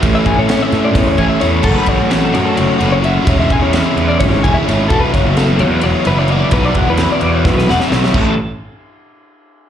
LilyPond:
<<
  \new Staff \with { instrumentName = "Clean electric guitar" } { \time 7/8 \key a \major \tempo 4 = 130 cis''16 e''16 gis''16 cis''8 e''8 d''16 cis''16 cis''16 gis''16 e''16 cis''8 | a'16 b'16 cis''8 a'8 cis''16 a'16 cis''8 b'16 cis''16 e''8 | cis''16 e''16 gis''16 cis''8 e''8 d''16 cis''16 cis''16 gis''16 e''16 cis''8 | a'16 b'16 cis''8 a'8 cis''16 b'16 cis''8 b'16 cis''16 d''8 |
b'16 d''16 fis''16 b'8 d''8 cis''16 b'16 b'16 fis''16 e''16 cis''8 | a'8 r2. | }
  \new Staff \with { instrumentName = "Overdriven electric guitar" } { \time 7/8 \key a \major <a, e a cis' e'>4 <a, e a cis' e'>4. <a cis' e'>8 <e a cis' e'>8 | <fis a cis' fis'>4 <fis a cis' fis'>4. <a cis' fis'>8 <fis a cis' fis'>8 | <e gis cis' e'>4 <e gis cis' e'>4. <gis cis' e'>8 <e gis cis' e'>8 | <e fis b e'>4 <e fis b e'>4. <fis b e'>8 <e fis b e'>8 |
<e fis b e'>4 <e fis b e'>4. <fis b e'>8 <e fis b e'>8 | <a, e a cis' e'>8 r2. | }
  \new Staff \with { instrumentName = "Picked electric bass" } { \clef bass \time 7/8 \key a \major a,,8 a,,16 a,8 r16 a,8 e,16 e,16 a,,16 r16 e,8 | fis,,16 r16 a,,16 a,,8. fis,8 fis,,16 r16 fis,,4 | e,,8 e,,16 e,8 r16 e,8 gis,,16 gis,,16 e,,16 r16 gis,,8 | e,,16 r16 fis,,16 fis,,8. e,8 e,,16 r16 fis,,4 |
b,,8 e,,16 e,8 r16 e,8 b,,16 b,,16 e,,16 r16 b,,8 | a,,8 r2. | }
  \new DrumStaff \with { instrumentName = "Drums" } \drummode { \time 7/8 <bd cymr>8 <bd cymr>8 <cymr sn>8 <cymr sn>8 <bd cymr sn>8 <bd cymr>8 <cymr sn>8 | <cymc bd>8 <bd cymr>8 <cymr sn>8 cymr8 cymr8 cymr8 cymr8 | <bd cymr>8 <bd cymr>8 <cymr sn>8 cymr8 <bd cymr>8 <bd cymr>8 <cymr sn>8 | <bd cymr>8 <bd cymr sn>8 <cymr sn>8 cymr8 cymr8 cymr8 cymr8 |
<bd cymr>8 <bd cymr>8 <cymr sn>8 cymr8 <bd sn>16 sn16 sn16 sn16 sn16 sn16 | <cymc bd>4 r4 r4. | }
>>